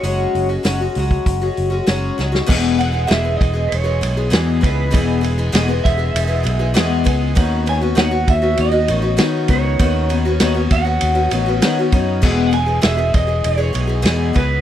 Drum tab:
CC |----------------|x---------------|----------------|----------------|
RD |----------------|--x-x-x-x-x-x-x-|x-x-x-x-x-x-x-x-|x-x-x-x-x-x-x-x-|
HH |o-o-o-o-o-o-o---|----------------|----------------|----------------|
SD |----o-------o-oo|----o-------o---|----o-------o---|----o-------o---|
BD |-------oo-------|o-----o-------o-|o-----o-------o-|o-----o-------o-|

CC |----------------|x---------------|
RD |x-x-x-x-x-x-x-x-|--x-x-x-x-x-x-x-|
HH |----------------|----------------|
SD |----o-------o---|----o-------o---|
BD |o-----o-------o-|o-----o-------o-|